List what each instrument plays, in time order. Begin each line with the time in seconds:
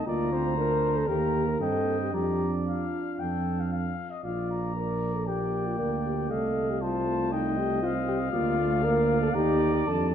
0.06 tuba D2, trombone A#3, french horn F4, trumpet D5, cornet A#5
0.32 trombone C4, trumpet C5
0.57 trombone D4, french horn A#4
0.96 french horn A4
1.07 tuba D#2, trombone A#3, french horn G4, trumpet A#4, cornet A#5
1.48 french horn A#4
1.60 tuba G2, trombone C4, french horn A4, trumpet D#5, cornet G5
2.00 french horn G4
2.12 tuba F2, trombone D4, french horn G4, trumpet D5, cornet A#5
2.67 french horn F4, cornet F5
3.19 tuba F2, trumpet A4, cornet G5
3.60 cornet F5
3.73 cornet F5
4.11 cornet D#5
4.23 tuba A#1, french horn F4, trumpet D5, cornet F5
4.51 cornet A#5
4.76 french horn A#4, trumpet D5
5.15 french horn A4
5.26 trombone A#3, french horn G4, trumpet D5, cornet G5
5.67 french horn F4
5.78 tuba D2, french horn A#4, trumpet D5
6.06 french horn G4
6.30 tuba C2, trombone A3, french horn A4, trumpet D#5, cornet F5
6.70 french horn G4
6.81 trombone G3, french horn F4, trumpet C5, cornet A5
7.06 trombone A3
7.32 french horn D#4, trumpet D#5, cornet G5
7.58 french horn G4
7.83 trombone C4, french horn F4, cornet F5
8.08 french horn G4
8.32 tuba D2, trombone A#3, french horn F4, trumpet D5
8.58 trombone A3
8.84 trombone A#3, french horn A#4, trumpet D5
9.23 french horn A4
9.34 tuba D#2, trombone D#4, french horn G4, cornet A#5
9.74 french horn G4
9.87 tuba F2, trombone D4, french horn A4, cornet A5